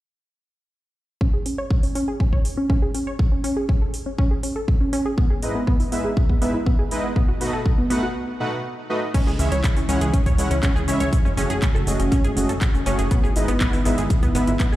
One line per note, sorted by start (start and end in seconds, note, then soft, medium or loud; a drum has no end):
1.21 1.28 C#4 loud
1.21 kick loud
1.33 1.38 G#4 medium
1.46 1.50 C#4 medium
1.46 open hi-hat loud
1.58 1.63 C#5 medium
1.71 kick loud
1.83 1.88 C#4 medium
1.83 open hi-hat medium
1.95 2.02 C#4 loud
1.95 open hi-hat loud
2.08 2.12 G#4 medium
2.20 2.25 C#4 medium
2.20 kick loud
2.33 2.37 C#5 medium
2.33 kick medium
2.45 open hi-hat loud
2.57 2.62 C#4 medium
2.70 2.77 C#4 loud
2.70 kick loud
2.82 2.87 G#4 medium
2.95 2.99 C#4 medium
2.95 open hi-hat loud
3.07 3.12 C#5 medium
3.19 kick loud
3.32 3.36 C#4 medium
3.44 3.51 C#4 loud
3.44 open hi-hat loud
3.57 3.61 G#4 medium
3.69 3.73 C#4 medium
3.69 kick loud
3.81 3.86 A4 medium
3.94 open hi-hat loud
4.06 4.11 C#4 medium
4.18 4.25 C#4 loud
4.18 kick loud
4.31 4.35 G#4 medium
4.43 4.48 C#4 medium
4.43 open hi-hat loud
4.56 4.60 A4 medium
4.68 kick loud
4.81 4.85 C#4 medium
4.93 5.00 C#4 loud
4.93 open hi-hat loud
5.06 5.10 G#4 medium
5.18 5.22 B3 medium
5.18 kick loud
5.30 5.35 G#4 medium
5.43 5.52 G#2 medium
5.43 5.52 G#3 medium
5.43 5.52 D#4 medium
5.43 5.52 E4 medium
5.43 5.52 B4 medium
5.43 5.52 D#5 medium
5.43 open hi-hat loud
5.55 5.60 B3 medium
5.67 5.74 B3 loud
5.67 kick loud
5.80 5.84 E4 medium
5.80 open hi-hat medium
5.92 6.02 G#2 medium
5.92 6.02 G#3 medium
5.92 5.97 B3 medium
5.92 6.02 D#4 medium
5.92 6.02 E4 medium
5.92 6.02 B4 medium
5.92 6.02 E5 medium
5.92 open hi-hat loud
6.05 6.09 G#4 medium
6.17 kick loud
6.29 6.34 B3 medium
6.29 kick medium
6.42 6.52 G#2 medium
6.42 6.52 G#3 medium
6.42 6.49 B3 loud
6.42 6.52 D#4 medium
6.42 6.52 E4 medium
6.42 6.52 B4 medium
6.42 6.52 E5 medium
6.42 open hi-hat loud
6.54 6.59 E4 medium
6.66 6.71 B3 medium
6.66 kick loud
6.79 6.83 G#4 medium
6.91 7.01 G#3 loud
6.91 7.01 D#4 medium
6.91 7.01 E4 medium
6.91 7.01 B4 medium
6.91 7.01 D#5 loud
6.91 open hi-hat loud
7.04 7.08 B3 medium
7.16 7.23 B3 loud
7.16 kick loud
7.28 7.33 F#4 medium
7.41 7.51 B2 medium
7.41 7.51 A3 medium
7.41 7.45 B3 medium
7.41 7.51 D#4 medium
7.41 7.51 F#4 medium
7.41 7.51 B4 medium
7.41 7.51 D#5 medium
7.41 open hi-hat loud
7.53 7.58 A4 medium
7.66 kick loud
7.78 7.83 B3 medium
7.90 8.00 B2 medium
7.90 8.00 A3 medium
7.90 7.97 B3 loud
7.90 8.00 D#4 medium
7.90 8.00 F#4 medium
7.90 8.00 B4 medium
7.90 8.00 F#5 medium
7.90 open hi-hat loud
8.03 8.07 F#4 medium
8.40 8.50 B2 medium
8.40 8.50 A3 medium
8.40 8.50 D#4 medium
8.40 8.50 F#4 medium
8.40 8.50 B4 medium
8.40 8.50 F#5 medium
8.90 8.99 A3 loud
8.90 8.99 D#4 medium
8.90 8.99 F#4 medium
8.90 8.99 B4 medium
8.90 8.99 D#5 loud
9.14 13.07 C#3 medium
9.14 11.11 E3 medium
9.14 13.07 G#3 medium
9.14 9.21 C#4 loud
9.14 11.11 E4 medium
9.14 kick loud
9.14 closed hi-hat medium
9.14 crash medium
9.14 cabasa soft
9.27 9.37 C#2 medium
9.27 9.31 G#4 medium
9.27 cabasa soft
9.39 9.50 C#2 loud
9.39 9.49 C#3 medium
9.39 9.49 G#3 medium
9.39 9.44 C#4 medium
9.39 9.49 C#4 medium
9.39 9.49 E4 medium
9.39 9.49 C#5 medium
9.39 9.49 E5 medium
9.39 open hi-hat loud
9.39 cabasa medium
9.52 9.62 C#2 medium
9.52 9.56 C#5 medium
9.52 closed hi-hat medium
9.52 cabasa soft
9.64 kick loud
9.64 clap loud
9.64 closed hi-hat medium
9.64 cabasa soft
9.77 9.87 C#2 medium
9.77 9.81 C#4 medium
9.77 open hi-hat medium
9.77 cabasa soft
9.89 9.99 C#2 loud
9.89 9.99 C#3 medium
9.89 9.99 G#3 medium
9.89 9.96 C#4 loud
9.89 9.99 C#4 medium
9.89 9.99 E4 medium
9.89 9.99 C#5 medium
9.89 9.99 F#5 medium
9.89 open hi-hat loud
9.89 cabasa medium
10.01 10.11 C#2 medium
10.01 10.06 G#4 medium
10.01 closed hi-hat medium
10.01 cabasa soft
10.14 10.18 C#4 medium
10.14 kick loud
10.14 closed hi-hat medium
10.14 cabasa soft
10.26 10.36 D#2 medium
10.26 10.31 C#5 medium
10.26 kick medium
10.26 closed hi-hat soft
10.26 cabasa soft
10.38 10.49 C#2 loud
10.38 10.48 C#3 medium
10.38 10.48 G#3 medium
10.38 10.48 C#4 medium
10.38 10.48 E4 medium
10.38 10.48 C#5 medium
10.38 10.48 F#5 medium
10.38 open hi-hat loud
10.38 cabasa medium
10.51 10.61 C#2 medium
10.51 10.55 C#4 medium
10.51 closed hi-hat medium
10.51 cabasa soft
10.63 10.70 C#4 loud
10.63 kick loud
10.63 clap loud
10.63 closed hi-hat medium
10.63 cabasa soft
10.76 10.86 C#2 medium
10.76 10.80 G#4 medium
10.76 cabasa soft
10.88 10.98 C#2 loud
10.88 10.98 G#3 loud
10.88 10.92 C#4 medium
10.88 10.98 C#4 medium
10.88 10.98 E4 medium
10.88 10.98 C#5 medium
10.88 10.98 E5 loud
10.88 open hi-hat loud
10.88 cabasa medium
11.00 11.11 C#2 medium
11.00 11.05 C#5 medium
11.00 closed hi-hat medium
11.00 cabasa soft
11.13 13.09 A3 medium
11.13 13.09 F#4 medium
11.13 kick loud
11.13 closed hi-hat medium
11.13 cabasa soft
11.25 11.35 F#1 medium
11.25 11.30 C#4 medium
11.25 cabasa soft
11.37 11.48 F#1 loud
11.37 11.47 A3 medium
11.37 11.44 C#4 loud
11.37 11.47 C#4 medium
11.37 11.47 F#4 medium
11.37 11.47 G#4 medium
11.37 11.47 C#5 medium
11.37 open hi-hat loud
11.37 cabasa medium
11.50 11.60 F#1 medium
11.50 11.55 G#4 medium
11.50 closed hi-hat soft
11.50 cabasa soft
11.62 11.67 C#4 medium
11.62 kick loud
11.62 clap loud
11.62 closed hi-hat medium
11.62 cabasa soft
11.75 11.85 F#1 medium
11.75 11.79 A4 medium
11.75 cabasa soft
11.87 11.97 F#1 loud
11.87 11.97 A3 medium
11.87 11.97 C#4 medium
11.87 11.97 F#4 medium
11.87 11.97 G#4 medium
11.87 11.97 D#5 medium
11.87 open hi-hat loud
11.87 cabasa medium
11.99 12.10 F#1 medium
11.99 12.04 C#4 medium
11.99 closed hi-hat medium
11.99 cabasa soft
12.12 12.19 C#4 loud
12.12 kick loud
12.12 closed hi-hat medium
12.12 cabasa soft
12.24 12.35 G#1 medium
12.24 12.29 G#4 medium
12.24 closed hi-hat soft
12.24 cabasa soft
12.37 12.47 F#1 medium
12.37 12.46 A3 medium
12.37 12.41 C#4 medium
12.37 12.46 C#4 medium
12.37 12.46 F#4 medium
12.37 12.46 G#4 medium
12.37 12.46 D#5 medium
12.37 open hi-hat loud
12.37 cabasa medium
12.49 12.59 F#1 medium
12.49 12.54 A4 medium
12.49 closed hi-hat medium
12.49 cabasa soft
12.61 kick loud
12.61 clap loud
12.61 closed hi-hat medium
12.61 cabasa soft
12.74 12.84 F#1 medium
12.74 12.79 C#4 medium
12.74 cabasa soft
12.86 12.97 F#1 medium
12.86 12.96 A3 medium
12.86 12.93 C#4 loud
12.86 12.96 C#4 medium
12.86 12.96 F#4 medium
12.86 12.96 G#4 medium
12.86 12.96 C#5 loud
12.86 open hi-hat loud
12.86 cabasa medium
12.99 13.09 F#1 loud
12.99 13.03 G#4 medium
12.99 closed hi-hat medium
12.99 cabasa soft
13.11 14.76 G#3 medium
13.11 13.16 B3 medium
13.11 14.76 B3 medium
13.11 14.76 D#4 medium
13.11 14.76 E4 medium
13.11 kick loud
13.11 closed hi-hat medium
13.11 cabasa soft
13.23 13.34 G#1 medium
13.23 13.28 G#4 medium
13.23 cabasa soft
13.36 13.46 G#1 loud
13.36 13.46 G#2 medium
13.36 13.46 G#3 medium
13.36 13.46 D#4 medium
13.36 13.46 E4 medium
13.36 13.46 B4 medium
13.36 13.46 D#5 medium
13.36 open hi-hat loud
13.36 cabasa medium
13.48 13.59 G#1 medium
13.48 13.53 B3 medium
13.48 closed hi-hat soft
13.48 cabasa soft
13.61 13.67 B3 loud
13.61 kick loud
13.61 clap loud
13.61 closed hi-hat medium
13.61 cabasa soft
13.73 13.83 G#1 medium
13.73 13.78 E4 medium
13.73 open hi-hat medium
13.73 cabasa soft
13.85 13.96 G#1 loud
13.85 13.95 G#2 medium
13.85 13.95 G#3 medium
13.85 13.90 B3 medium
13.85 13.95 D#4 medium
13.85 13.95 E4 medium
13.85 13.95 B4 medium
13.85 13.95 E5 medium
13.85 open hi-hat loud
13.85 cabasa medium
13.98 14.08 G#1 medium
13.98 14.02 G#4 medium
13.98 closed hi-hat medium
13.98 cabasa soft
14.10 kick loud
14.10 closed hi-hat medium
14.10 cabasa soft
14.23 14.33 G#1 medium
14.23 14.27 B3 medium
14.23 kick medium
14.23 closed hi-hat soft
14.23 cabasa soft
14.35 14.45 G#1 loud
14.35 14.45 G#2 medium
14.35 14.45 G#3 medium
14.35 14.42 B3 loud
14.35 14.45 D#4 medium
14.35 14.45 E4 medium
14.35 14.45 B4 medium
14.35 14.45 E5 medium
14.35 open hi-hat loud
14.35 cabasa medium
14.47 14.58 G#1 medium
14.47 14.52 E4 medium
14.47 closed hi-hat soft
14.47 cabasa soft
14.60 14.64 B3 medium
14.60 kick loud
14.60 clap loud
14.60 closed hi-hat medium
14.60 cabasa soft
14.72 14.76 G#1 medium
14.72 14.76 G#4 medium
14.72 cabasa soft